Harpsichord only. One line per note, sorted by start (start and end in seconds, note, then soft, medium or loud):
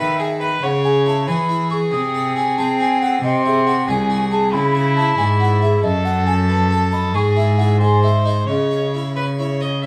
0.00 0.59 D#3 medium
0.00 0.20 A4 soft
0.20 0.43 G#4 medium
0.41 0.63 B4 medium
0.62 1.23 C#3 medium
0.84 1.07 G#4 medium
1.06 1.29 E4 medium
1.28 1.89 E3 medium
1.28 1.49 F#4 soft
1.49 1.72 E4 medium
1.70 1.92 G#4 medium
1.92 2.53 C3 medium
2.15 2.37 A4 medium
2.36 2.59 F#4 medium
2.58 3.19 C4 medium
2.58 2.79 G#4 soft
2.80 3.03 F#4 medium
3.02 3.24 A4 medium
3.24 3.84 C3 medium
3.46 3.68 G#4 medium
3.67 3.89 F#4 medium
3.88 4.49 C2 medium
3.88 4.10 G#4 medium
4.10 4.32 F#4 medium
4.31 4.53 G#4 medium
4.54 5.14 C#3 medium
4.75 4.98 G#4 medium
4.97 5.20 E4 medium
5.18 5.79 G#2 medium
5.18 5.40 F#4 soft
5.40 5.63 E4 medium
5.63 5.84 G#4 medium
5.84 7.11 F#2 medium
6.05 6.28 D#5 medium
6.27 6.50 A4 medium
6.49 6.71 B4 soft
6.71 6.94 A4 medium
6.92 7.14 D#5 medium
7.14 8.44 G#2 medium
7.14 7.36 G#3 medium
7.37 7.58 E4 medium
7.59 7.75 E4 medium
7.59 7.75 G#4 medium
7.81 8.03 G#3 medium
8.03 8.24 D#4 soft
8.25 8.42 D#4 soft
8.25 8.42 G#4 medium
8.48 9.86 C#3 medium
8.71 8.95 G#4 medium
8.94 9.18 E4 medium
9.16 9.39 F#4 soft
9.39 9.62 E4 medium
9.61 9.85 G#4 soft